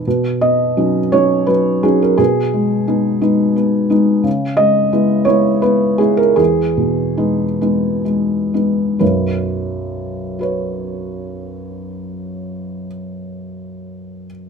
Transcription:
<<
  \new Staff \with { instrumentName = "Felt piano" } { \time 6/8 \key b \major \tempo 4. = 52 << { r8 dis''4 cis''8 b'8 gis'16 ais'16 | gis'2~ gis'8 r8 | r8 dis''4 cis''8 b'8 gis'16 ais'16 | gis'2~ gis'8 r8 |
b'2.~ | b'2. | } \\ { r2. | r2. | r2. | r2. |
r4. <fis' b' cis''>4.~ | <fis' b' cis''>2. | } >> }
  \new Staff \with { instrumentName = "Felt piano" } { \time 6/8 \key b \major b,8 b8 <fis cis' dis'>8 <fis cis' dis'>8 fis8 <fis cis' dis'>8 | b,8 gis8 <gis b dis'>8 <gis b dis'>8 b8 <gis b dis'>8 | cis8 gis8 <gis b e'>8 <gis b e'>8 b8 <gis b e'>8 | e,8 b,8 <gis b dis'>8 <gis b dis'>8 gis8 <gis b dis'>8 |
<b,, fis,>2.~ | <b,, fis,>2. | }
>>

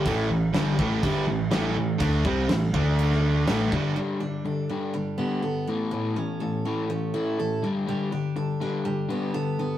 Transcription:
<<
  \new Staff \with { instrumentName = "Steel-string acoustic guitar" } { \time 4/4 \key d \lydian \tempo 4 = 122 r1 | r1 | \key g \lydian g8 d'8 a'8 d'8 g8 b8 a'8 a,8 | a,8 cis'8 a'8 cis'8 a8 e'8 a'8 g8 |
g8 d'8 a'8 d'8 g8 b8 a'8 b8 | }
  \new Staff \with { instrumentName = "Distorted electric guitar" } { \clef bass \time 4/4 \key d \lydian <a, e a>8 <a, e>8 <g, d g>8 <a, e a>8 <g, d g>8 <a, e>8 <a, e a>8 <a, e>8 | <d a d'>8 <c g c'>8 <a, e>8 <d a d'>4. <a, e a>8 <g, d g>8 | \key g \lydian r1 | r1 |
r1 | }
  \new Staff \with { instrumentName = "Overdriven electric guitar" } { \clef bass \time 4/4 \key d \lydian <a, e a>8 <a, e>8 <g, d g>8 <a, e a>8 <g, d g>8 <a, e>8 <a, e a>8 <a, e>8 | <d a d'>8 <c g c'>8 <a, e>8 <d a d'>4. <a, e a>8 <g, d g>8 | \key g \lydian <g, d g>8 <g, d>8 <g, d>8 <g, d g>8 <g, d>8 <g, d g>8 <g, d>8 <a, e a>8 | <a, e a>8 <a, e>8 <a, e>8 <a, e a>8 <a, e>8 <a, e a>8 <a, e>8 <g, d g>8 |
<g, d g>8 <g, d>8 <g, d>8 <g, d g>8 <g, d>8 <g, d g>8 <g, d>8 <g, d>8 | }
  \new Staff \with { instrumentName = "Picked electric bass" } { \clef bass \time 4/4 \key d \lydian a,,8 a,,8 g,,8 a,,8 g,,8 a,,8 a,,8 a,,8 | d,8 c,8 a,,8 d,4. a,,8 g,,8 | \key g \lydian r1 | r1 |
r1 | }
  \new DrumStaff \with { instrumentName = "Drums" } \drummode { \time 4/4 <cymc bd>4 <cymc sn>8 bd8 <cymc bd>4 <cymc sn>4 | <cymc bd>8 bd8 <cymc sn>8 bd8 cymc16 sn8. <cymc sn>8 bd8 | r4 r4 r4 r4 | r4 r4 r4 r4 |
r4 r4 r4 r4 | }
>>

